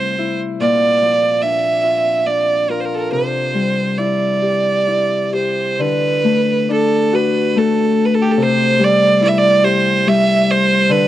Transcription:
0.00 0.65 C3 soft
0.00 0.65 G3 soft
0.00 0.66 A3 soft
0.00 2.77 C4 soft
0.00 0.18 E4 soft
0.00 0.40 C5 medium
0.18 1.08 E4 soft
0.60 3.17 A#2 medium
0.60 1.43 D5 loud
1.02 3.17 F3 soft
1.41 2.26 D4 soft
1.41 2.28 E5 medium
1.83 2.69 F4 soft
2.26 5.06 D4 soft
2.26 2.72 D5 medium
2.69 4.04 F4 soft
2.69 2.82 A#4 medium
2.80 2.87 C5 soft
2.85 2.96 A#4 medium
2.94 2.99 A4 soft
2.94 3.11 A#4 medium
3.12 5.83 C3 soft
3.12 3.99 C5 medium
3.54 5.83 G3 soft
3.98 4.86 E4 soft
3.98 5.33 D5 medium
4.42 5.33 G4 soft
4.87 7.48 E4 soft
5.33 7.18 G4 soft
5.33 5.82 C5 medium
5.79 8.44 D3 medium
5.79 6.70 B4 medium
6.24 7.55 A3 soft
6.69 9.49 D4 soft
6.69 7.16 A4 medium
7.12 8.85 F#4 soft
7.12 7.60 B4 medium
7.56 10.88 A3 medium
7.56 8.06 A4 medium
8.05 8.16 B4 medium
8.14 8.24 A4 medium
8.22 8.33 G4 medium
8.31 8.44 A4 medium
8.38 10.94 C3 medium
8.42 8.85 C5 medium
8.79 10.05 G3 soft
8.84 9.23 D5 medium
9.21 11.08 E4 medium
9.21 9.29 D5 medium
9.28 9.39 E5 medium
9.38 9.66 D5 medium
9.63 11.08 G4 medium
9.63 10.09 C5 medium
10.06 10.94 G3 soft
10.06 10.52 E5 loud
10.51 10.94 C5 loud
10.89 11.08 D3 medium
10.89 11.08 B4 loud

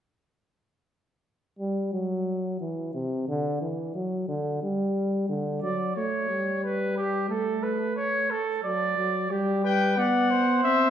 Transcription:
1.59 1.91 G3 medium
1.93 2.59 F#3 medium
2.61 2.94 E3 medium
2.95 3.28 C3 medium
3.28 3.61 D3 medium
3.61 3.94 E3 medium
3.95 4.27 F#3 medium
4.28 4.61 D3 medium
4.63 5.28 G3 medium
5.29 5.62 D3 medium
5.62 5.96 F#3 medium
5.62 5.94 D5 medium
5.96 6.29 A3 medium
5.96 6.62 C#5 medium
6.30 7.28 G3 medium
6.64 6.97 B4 medium
6.97 7.29 G4 medium
7.29 8.33 A3 medium
7.29 7.64 A4 medium
7.63 7.96 B4 medium
7.96 8.32 C#5 medium
8.31 8.63 A4 medium
8.64 8.95 F#3 medium
8.64 9.32 D5 medium
8.97 9.30 F#3 medium
9.30 9.96 G3 medium
9.30 9.63 G4 medium
9.64 9.97 B4 medium
9.64 9.99 G5 medium
9.97 10.63 B3 medium
9.97 10.32 D5 medium
9.97 10.63 F#5 medium
10.30 10.90 C5 medium
10.63 10.90 C4 medium
10.63 10.90 E5 medium

